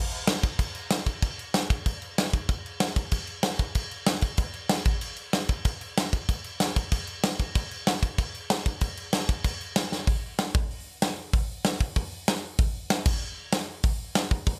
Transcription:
0.12 crash
0.27 snare, crash
0.43 kick, crash
0.59 kick, crash
0.75 crash
0.90 snare, crash
1.06 kick, crash
1.22 kick, crash
1.39 crash
1.54 snare, crash
1.70 kick, crash
1.86 kick, crash
2.02 crash
2.18 snare, crash
2.33 kick, crash
2.49 kick, crash
2.66 crash
2.80 snare, crash
2.96 kick, crash
3.11 kick, crash
3.27 crash
3.43 snare, crash
3.59 kick, crash
3.75 kick, crash
3.91 crash
4.06 snare, crash
4.21 kick, crash
4.37 kick, crash
4.54 crash
4.69 snare, crash
4.85 kick, crash
5.01 crash
5.17 crash
5.33 snare, crash
5.49 kick, crash
5.65 kick, crash
5.81 crash
5.97 snare, crash
6.13 kick, crash
6.29 kick, crash
6.44 crash
6.60 snare, crash
6.76 kick, crash
6.92 kick, crash
7.07 crash
7.23 snare, crash
7.39 kick, crash
7.55 kick, crash
7.71 crash
7.87 snare, crash
8.03 kick, crash
8.18 kick, crash
8.35 crash
8.50 snare, crash
8.66 kick, crash
8.81 kick, crash
8.97 crash
9.13 snare, crash
9.29 kick, crash
9.44 kick, crash
9.61 crash
9.76 snare, crash
9.92 snare
10.07 kick, open hi-hat
10.39 snare, open hi-hat
10.55 kick
10.71 open hi-hat
11.02 snare, open hi-hat
11.33 kick, open hi-hat
11.64 snare, open hi-hat
11.81 kick
11.96 kick, open hi-hat
12.28 snare, open hi-hat
12.59 kick, open hi-hat
12.90 snare, open hi-hat
13.06 kick, crash
13.52 snare, open hi-hat
13.83 kick, open hi-hat
14.15 snare, open hi-hat
14.31 kick
14.46 kick, open hi-hat

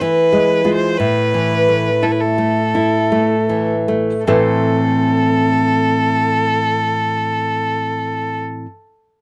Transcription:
0.00 E3 B4
0.33 G#3
0.64 G#3 F4
0.75 C5
0.98 A2 B4
1.34 E3
1.68 A3
2.03 E4 A4
2.12 B4
2.20 A4
2.38 A3
2.75 E4
3.12 A3
3.49 E3
3.88 A3
4.26 A2 E3 C4 E4 A4 C5

